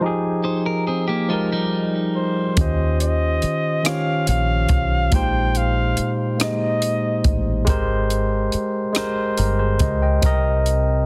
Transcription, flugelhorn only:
2.15 C5
2.58 D#5
3.01 D#5
3.86 F5
4.29 F5
5.14 G5
5.57 F5
6.42 D#5

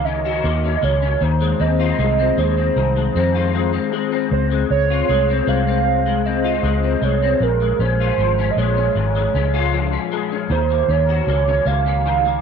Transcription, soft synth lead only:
0.05 D#5
0.77 D#5
0.83 C#5
1.22 C5
1.60 D#5
2.39 C5
4.33 C5
4.71 C#5
5.48 F5
6.26 D#5
7.04 C#5
7.43 A#4
7.81 C5
8.51 D#5
8.58 C#5
10.52 C5
10.90 C#5
11.67 F5

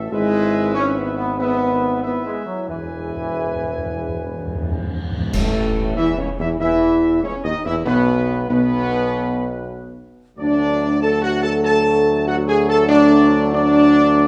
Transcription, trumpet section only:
0.11 B4 E5
1.38 B4 E5
2.02 B4 E5
2.68 B4 G#5
5.33 A4
5.97 E5
6.19 C#5
6.40 E5
6.59 E5
7.23 C#5
7.44 D#5
7.66 E5
7.87 B4
8.49 B4
10.39 D5
11.01 A5
11.23 F#5
11.43 A5
11.64 A5
12.27 F#5
12.48 G#5
12.69 A5
12.89 D5
13.54 D5

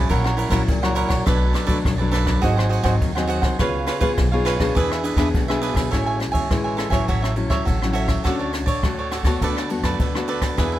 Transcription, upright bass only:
0.11 A#1
0.50 A#1
0.68 C#2
1.09 A#1
1.27 B1
1.85 B1
2.43 G#1
2.83 G#1
3.02 D#2
3.41 C2
3.60 C#2
4.18 B1
4.76 E2
5.16 E2
5.35 B1
5.74 B1
5.93 A1
6.32 E2
6.51 A1
6.90 A1
7.09 A1
7.49 C#2
7.67 A1
8.25 D2
8.65 A1
8.83 D2
9.23 D2
9.42 D2
9.82 F#2
10.00 D2
10.58 E2

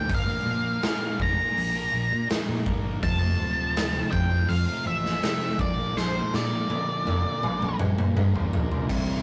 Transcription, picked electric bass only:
0.10 G1
0.46 A#2
1.20 F1
1.57 A#1
1.94 A#1
2.12 A#2
2.49 A#2
2.67 G1
3.03 F1
3.40 D1
4.13 F2
4.49 F2
4.86 A1
5.59 A#1
6.34 A#2
7.07 F1
7.44 A#1
7.80 A#1
7.98 A#2
8.17 G1
8.35 A1
8.53 A#1
8.71 C2
8.89 C2

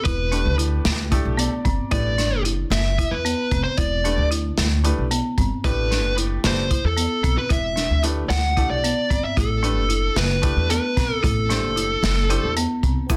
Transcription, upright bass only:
0.05 E1
0.45 D2
0.85 D2
1.25 B1
1.65 G1
1.92 A1
2.31 F#1
2.70 F#1
3.11 E2
3.52 F1
3.78 E1
4.18 D2
4.58 D2
4.98 B1
5.38 G1
5.64 A1
6.04 F#1
6.45 F#1
6.84 E2
7.24 B1
7.50 E1
7.90 D2
8.30 D2
8.69 B1
9.11 G1
9.37 A1
9.76 F#1
10.16 F#1
10.56 E2
10.97 B1
11.24 A1
11.63 F#1
12.03 F#1
12.43 E2
12.83 C2
13.10 A1

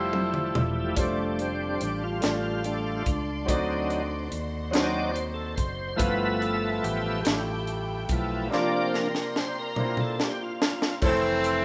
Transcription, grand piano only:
Already playing: F3 G3 E4 G4 A4
0.95 G3 D4 F4 C5
1.02 A3
2.20 A3 D4 F4 D5
3.46 D3 C4 D#4 F#4 D5
4.71 C4 D#4 F#4
4.75 C5
5.97 G2 A3 E4 F4
6.02 B4
7.23 A3 E4 F4 G4
8.50 C3 A#3 D4 E4 C5
8.58 F4
9.76 A#3 D4 E4 C5
9.85 F4
11.02 A3 C4 E4 A4 C5

